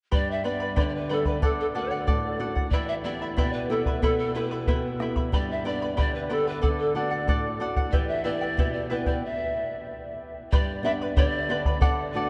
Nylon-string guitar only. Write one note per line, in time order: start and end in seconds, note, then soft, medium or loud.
0.12 0.75 G2 medium
0.44 0.96 G3 soft
0.44 0.96 B3 soft
0.44 0.97 D4 soft
0.76 1.40 D3 medium
1.10 1.36 G3 soft
1.10 1.36 B3 soft
1.10 1.37 D4 soft
1.42 2.05 D3 medium
1.75 2.27 A3 soft
1.75 2.27 D4 soft
1.75 2.27 F#4 soft
2.08 2.71 A2 medium
2.39 2.66 A3 soft
2.39 2.66 D4 soft
2.39 2.66 F#4 soft
2.72 3.35 E3 medium
3.05 3.57 B3 soft
3.05 3.57 E4 soft
3.05 3.58 G4 soft
3.37 4.00 B2 medium
3.69 4.22 B3 soft
3.69 4.22 E4 soft
3.69 4.22 G4 medium
4.02 4.66 B2 medium
4.35 4.87 B3 soft
4.35 4.87 E4 soft
4.35 4.88 G4 soft
4.68 5.31 B2 medium
4.99 5.26 B3 soft
4.99 5.26 E4 soft
4.99 5.26 G4 soft
5.32 5.96 G2 medium
5.64 6.17 B3 soft
5.64 6.17 D4 soft
5.64 6.17 G4 soft
5.97 6.61 D3 medium
6.29 6.56 B3 soft
6.29 6.56 D4 soft
6.29 6.57 G4 soft
6.63 7.26 D3 medium
6.95 7.47 A3 soft
6.95 7.48 D4 soft
6.95 7.47 F#4 soft
7.28 7.91 A2 medium
7.60 7.86 A3 soft
7.60 7.86 D4 soft
7.60 7.87 F#4 soft
7.93 8.56 E3 medium
8.25 8.77 B3 soft
8.25 8.77 E4 soft
8.25 8.78 G4 soft
8.57 9.21 B2 medium
8.91 9.17 B3 soft
8.91 9.17 E4 soft
8.91 9.17 G4 soft
10.52 11.15 G2 medium
10.83 11.36 B3 soft
10.83 11.36 D4 soft
10.83 11.37 G4 medium
11.17 11.80 D3 medium
11.49 11.75 B3 soft
11.49 11.76 D4 soft
11.49 11.76 G4 soft
11.82 12.29 D3 medium
12.14 12.29 A3 soft
12.14 12.29 D4 soft
12.14 12.29 F#4 soft